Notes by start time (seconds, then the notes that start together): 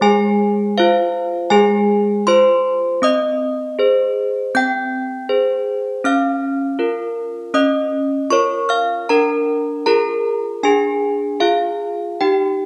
0.01 G#3 G#4 G#5
0.78 F4 C5 F5
1.50 G#3 G#4 G#5
2.27 F4 C5 C6
3.02 C4 D#5 D#6
3.79 G#4 C5
4.55 C4 G5 G6
5.29 G#4 C5
6.04 C#4 F5 F6
6.79 F4 A#4
7.54 C#4 D#5 D#6
8.30 F4 A#4 C#5 C#6
8.69 F5 F6
9.09 D4 A#4 A#5
9.86 F4 G#4 A#4 A#5
10.63 D4 G#4 G#5
11.40 F4 G#4 F5
12.21 D#4 G4 G5